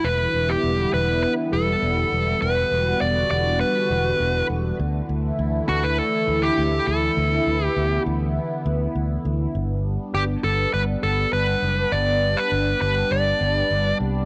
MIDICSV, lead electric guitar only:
0, 0, Header, 1, 2, 480
1, 0, Start_track
1, 0, Tempo, 594059
1, 34, Time_signature, 4, 2, 24, 8
1, 11515, End_track
2, 0, Start_track
2, 0, Title_t, "Lead electric guitar"
2, 0, Program_c, 0, 29
2, 36, Note_on_c, 0, 71, 93
2, 396, Note_on_c, 0, 67, 85
2, 406, Note_off_c, 0, 71, 0
2, 730, Note_off_c, 0, 67, 0
2, 756, Note_on_c, 0, 71, 89
2, 986, Note_off_c, 0, 71, 0
2, 995, Note_on_c, 0, 71, 99
2, 1060, Note_off_c, 0, 71, 0
2, 1236, Note_on_c, 0, 69, 89
2, 1951, Note_off_c, 0, 69, 0
2, 1954, Note_on_c, 0, 71, 102
2, 2431, Note_off_c, 0, 71, 0
2, 2434, Note_on_c, 0, 74, 105
2, 2663, Note_off_c, 0, 74, 0
2, 2672, Note_on_c, 0, 74, 98
2, 2897, Note_off_c, 0, 74, 0
2, 2913, Note_on_c, 0, 71, 94
2, 3601, Note_off_c, 0, 71, 0
2, 4595, Note_on_c, 0, 66, 89
2, 4716, Note_on_c, 0, 71, 99
2, 4718, Note_off_c, 0, 66, 0
2, 4834, Note_off_c, 0, 71, 0
2, 4834, Note_on_c, 0, 69, 102
2, 5194, Note_on_c, 0, 67, 93
2, 5205, Note_off_c, 0, 69, 0
2, 5552, Note_on_c, 0, 69, 91
2, 5565, Note_off_c, 0, 67, 0
2, 6191, Note_off_c, 0, 69, 0
2, 6191, Note_on_c, 0, 67, 91
2, 6481, Note_off_c, 0, 67, 0
2, 8197, Note_on_c, 0, 67, 84
2, 8261, Note_off_c, 0, 67, 0
2, 8435, Note_on_c, 0, 69, 84
2, 8672, Note_off_c, 0, 69, 0
2, 8675, Note_on_c, 0, 71, 98
2, 8740, Note_off_c, 0, 71, 0
2, 8914, Note_on_c, 0, 69, 82
2, 9152, Note_off_c, 0, 69, 0
2, 9155, Note_on_c, 0, 71, 93
2, 9634, Note_on_c, 0, 74, 112
2, 9649, Note_off_c, 0, 71, 0
2, 9995, Note_on_c, 0, 71, 96
2, 10005, Note_off_c, 0, 74, 0
2, 10344, Note_off_c, 0, 71, 0
2, 10353, Note_on_c, 0, 71, 91
2, 10593, Note_on_c, 0, 74, 92
2, 10601, Note_off_c, 0, 71, 0
2, 11281, Note_off_c, 0, 74, 0
2, 11515, End_track
0, 0, End_of_file